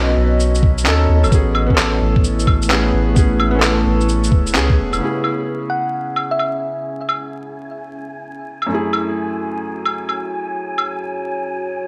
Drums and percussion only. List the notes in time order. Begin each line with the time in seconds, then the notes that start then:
0.40 shaker
0.55 shaker
0.63 kick
0.78 shaker
0.86 clap, shaker
1.24 claves, shaker
1.32 kick, shaker
1.55 claves
1.70 kick
1.78 clap, shaker
2.16 kick
2.24 shaker
2.39 shaker
2.47 kick, claves
2.62 shaker
2.70 clap, claves, shaker
3.16 kick, shaker
3.40 claves
3.62 clap, shaker
4.01 shaker
4.09 shaker
4.24 shaker
4.32 kick
4.47 shaker
4.55 clap, shaker
4.70 kick
4.93 claves, shaker
5.24 claves
6.16 claves
6.39 claves
7.09 claves
8.62 claves
8.93 claves
9.86 claves
10.09 claves
10.78 claves